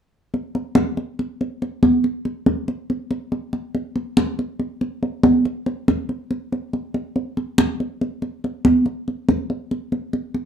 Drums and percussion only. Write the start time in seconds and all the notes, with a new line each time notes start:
0.34 high conga
0.55 high conga
0.75 high conga
0.97 high conga
1.19 high conga
1.41 high conga
1.62 high conga
1.83 high conga
2.04 high conga
2.25 high conga
2.46 high conga
2.68 high conga
2.90 high conga
3.11 high conga
3.32 high conga
3.53 high conga
3.75 high conga
3.96 high conga
4.17 high conga
4.39 high conga
4.59 high conga
4.81 high conga
5.03 high conga
5.23 high conga
5.45 high conga
5.66 high conga
5.88 high conga
6.09 high conga
6.31 high conga
6.52 high conga
6.73 high conga
6.94 high conga
7.16 high conga
7.37 high conga
7.58 high conga
7.80 high conga
8.01 high conga
8.22 high conga
8.44 high conga
8.65 high conga
8.86 high conga
9.08 high conga
9.29 high conga
9.50 high conga
9.71 high conga
9.92 high conga
10.13 high conga
10.34 high conga